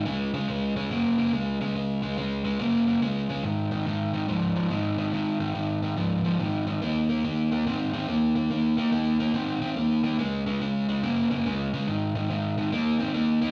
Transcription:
X:1
M:4/4
L:1/8
Q:"Swing" 1/4=142
K:Ab
V:1 name="Overdriven electric guitar" clef=bass
[D,A,] [D,A,] [D,A,] [D,A,] [D,B,] [D,B,] [D,A,] [D,A,] | [D,A,] [D,A,] [D,A,] [D,A,] [D,B,] [D,B,] [D,A,] [D,A,] | [A,,E,] [A,,E,] [A,,E,] [A,,E,] [A,,F,] [A,,F,] [A,,E,] [A,,E,] | [A,,E,] [A,,E,] [A,,E,] [A,,E,] [A,,F,] [A,,F,] [A,,E,] [A,,E,] |
[E,B,] [E,B,] [E,B,] [E,B,] [E,C] [E,C] [E,B,] [E,B,] | [E,B,] [E,B,] [E,B,] [E,B,] [E,C] [E,C] [E,B,] [E,B,] | [D,A,] [D,A,] [D,A,] [D,A,] [D,B,] [D,B,] [D,A,] [D,A,] | [A,,E,] [A,,E,] [A,,E,] [A,,E,] [E,B,] [E,C] [E,B,] [E,B,] |]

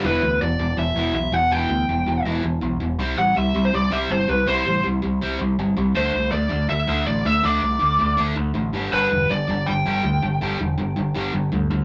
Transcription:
X:1
M:4/4
L:1/16
Q:1/4=162
K:Em
V:1 name="Lead electric guitar"
B4 d4 e4 e2 f2 | g8 z8 | z2 f2 e3 c d2 e2 c2 B2 | c4 z12 |
c4 d4 e4 d2 e2 | d8 z8 | B4 d4 g8- | g12 z4 |]
V:2 name="Distorted electric guitar" clef=bass
[E,,B,,E,]2 [E,,B,,]2 [E,,B,,]2 [E,,B,,]2 [E,,B,,]2 [E,,B,,E,]2 [E,,B,,]2 [E,,B,,]2 | [E,,B,,E,]2 [E,,B,,]2 [E,,B,,]2 [E,,B,,]2 [E,,B,,E,]2 [E,,B,,]2 [E,,B,,]2 [E,,B,,]2 | [C,G,C]2 [C,G,]2 [C,G,]2 [C,G,]2 [C,G,]2 [C,G,C]2 [C,G,]2 [C,G,]2 | [C,G,C]2 [C,G,]2 [C,G,]2 [C,G,]2 [C,G,C]2 [C,G,]2 [C,G,]2 [C,G,]2 |
[D,A,D]2 [D,A,]2 [D,A,]2 [D,A,]2 [D,A,]2 [D,A,D]2 [D,A,]2 [D,A,]2 | [D,A,D]2 [D,A,]2 [D,A,]2 [D,A,]2 [D,A,D]2 [D,A,]2 [D,A,]2 [G,,D,G,]2 | [G,,D,G,]2 [G,,D,]2 [G,,D,]2 [G,,D,]2 [G,,D,]2 [G,,D,G,]2 [G,,D,]2 [G,,D,]2 | [G,,D,G,]2 [G,,D,]2 [G,,D,]2 [G,,D,]2 [G,,D,G,]2 [G,,D,]2 [G,,D,]2 [G,,D,]2 |]
V:3 name="Picked electric bass" clef=bass
E,,,2 D,,2 E,,,2 E,,,2 E,,,2 E,,,2 B,,,2 E,,,2 | E,,,2 D,,2 E,,,2 E,,,2 E,,,2 E,,,2 B,,,2 E,,,2 | C,,2 A,,,2 C,,2 C,,2 C,,2 C,,2 G,,,2 C,,2 | C,,2 A,,,2 C,,2 C,,2 C,,2 C,,2 G,,,2 C,,2 |
D,,2 C,,2 D,,2 D,,2 D,,2 D,,2 A,,,2 D,,2 | D,,2 C,,2 D,,2 D,,2 D,,2 D,,2 A,,,2 G,,,2 | G,,,2 E,,,2 G,,,2 G,,,2 G,,,2 G,,,2 D,,2 G,,,2 | G,,,2 E,,,2 G,,,2 G,,,2 G,,,2 G,,,2 D,,2 D,,2 |]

